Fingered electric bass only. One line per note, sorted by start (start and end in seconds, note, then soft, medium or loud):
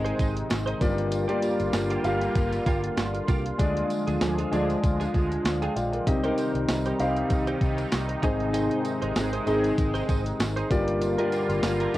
0.00 0.11 G#1 loud
0.19 0.42 G#1 medium
0.50 0.73 G#1 medium
0.81 1.25 G1 medium
1.60 1.70 G1 loud
1.73 1.96 G1 medium
2.04 2.27 G1 medium
2.35 2.58 G1 loud
2.66 2.89 G1 medium
2.97 3.20 G1 medium
3.28 3.51 C2 medium
3.59 3.82 D2 loud
4.07 4.17 D2 medium
4.21 4.43 D2 medium
4.52 4.74 D2 medium
4.84 5.06 D2 loud
5.14 5.37 D2 loud
5.44 5.67 D2 medium
5.76 5.98 A#1 medium
6.07 6.29 C2 loud
6.54 6.65 C2 medium
6.68 6.91 C2 medium
6.99 7.22 C2 medium
7.30 7.53 C2 loud
7.61 7.84 C2 medium
7.92 8.15 C2 medium
8.23 8.68 G#1 loud
9.02 9.12 G#1 medium
9.16 9.38 G#1 loud
9.47 9.69 G#1 medium
9.78 10.00 G#1 loud
10.09 10.31 G#1 loud
10.40 10.62 G#1 loud
10.71 11.15 G1 loud
11.49 11.60 G1 medium
11.63 11.86 G1 medium
11.94 11.98 G1 medium